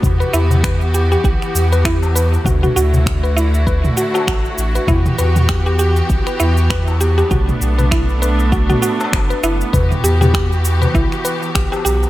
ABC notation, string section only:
X:1
M:4/4
L:1/8
Q:"Swing 16ths" 1/4=99
K:Em
V:1 name="String section"
[E,B,FG]8 | [D,A,EF]8 | [E,B,G]8 | [A,D]8 |
[E,FG]8 |]